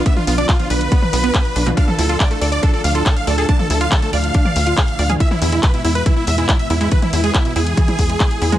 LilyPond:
<<
  \new Staff \with { instrumentName = "Supersaw synth" } { \time 4/4 \key d \dorian \tempo 4 = 140 e''16 f'16 f'16 d''16 f'16 f'16 b'2~ b'16 r16 | f''16 a'16 a'16 a'16 d''16 a'16 a'16 d''16 a'16 a'16 f''16 a'16 a'16 f''16 a'16 a'16 | a''16 a'16 a'16 f''16 a'16 a'16 f''2~ f''16 r16 | e''16 e'16 e'16 e'16 b'16 e'16 e'16 b'16 e'16 e'16 e''16 e'16 e'16 e''16 e'16 e'16 |
b'16 e'16 e'16 gis'16 e'16 e'16 gis'2~ gis'16 r16 | }
  \new Staff \with { instrumentName = "Synth arpeggio sound" } { \time 4/4 \key d \dorian b16 r16 b16 d'16 r16 f16 b'16 r16 b16 b'16 b16 b16 b16 r16 d'16 b,16 | d'16 r16 e'16 f'16 r16 a16 d''16 r16 d'16 d''16 r16 f'16 gis'16 r16 d''16 gis'16 | d'16 r16 e'16 f'16 r16 a16 d''16 r16 d'16 d''16 r16 f'16 gis'16 r16 d''16 gis'16 | e16 r16 e16 gis16 r16 b,16 e'16 r16 e16 e'16 r16 gis16 gis16 r16 e'16 gis16 |
e16 r16 e16 gis16 r16 b,16 e'16 r16 e16 e'16 r16 gis16 gis16 r16 e'16 gis16 | }
  \new Staff \with { instrumentName = "Analog synth pad" } { \clef bass \time 4/4 \key d \dorian << { <f d' f'>1~ | <f d' f'>1~ | <f d' f'>1 | <e b e'>1~ |
<e b e'>1 | } \\ { <b, d>1 | <a, d>1~ | <a, d>1 | <gis, b,>1~ |
<gis, b,>1 | } >> }
  \new Staff \with { instrumentName = "Analog synth bass" } { \clef bass \time 4/4 \key d \dorian r8 b,,8 r8 b,,8 r8 b,,8 r8 b,,8 | r8 d,8 r8 d,8 r8 d,8 r8 d,8 | r8 d,8 r8 d,8 r8 d,8 r8 d,8 | r8 e,8 r8 e,8 r8 e,8 r8 e,8 |
r8 e,8 r8 e,8 r8 e,8 r8 e,8 | }
  \new DrumStaff \with { instrumentName = "Drums" } \drummode { \time 4/4 <hh bd>16 toml16 hho16 hh16 <hc hh bd>16 hh16 hho16 hh16 <hh bd>16 toml16 hho16 hh16 <hc hh bd>16 hh16 hho16 <hh toml>16 | <hh bd>16 toml16 hho16 hh16 <hc hh bd>16 hh16 hho16 hh16 <hh bd>8 hho16 hh16 <hc hh bd>16 hh16 hho16 hh16 | <hh bd>16 toml16 hho16 hh16 <hc hh bd>16 hh16 hho16 hh16 <hh bd>16 toml16 hho16 hh16 <hc hh bd>16 hh16 hho16 <hh toml>16 | <hh bd>16 toml16 hho16 hh16 <hc hh bd>16 hh16 hho16 hh16 <hh bd>8 hho16 hh16 <hc hh bd>16 hh16 hho16 hh16 |
<hh bd>16 <hh toml>16 hho16 hh16 <hc hh bd>16 hh16 hho16 hh16 <hh bd>16 <hh toml>16 <hho bd>16 hh16 <hc hh bd>16 hh16 hho16 <hh toml>16 | }
>>